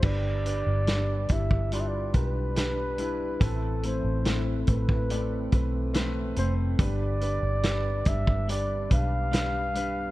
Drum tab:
CC |x---------------|----------------|----------------|
HH |--x-x-x-x-x-x-x-|x-x-x-x-x-x-x-x-|x-x-x-x-x-x-x-x-|
SD |----o-------o---|----o-------o---|----o-------o---|
BD |o-----oo--o-----|o-----oo--o-----|o-----oo--o-----|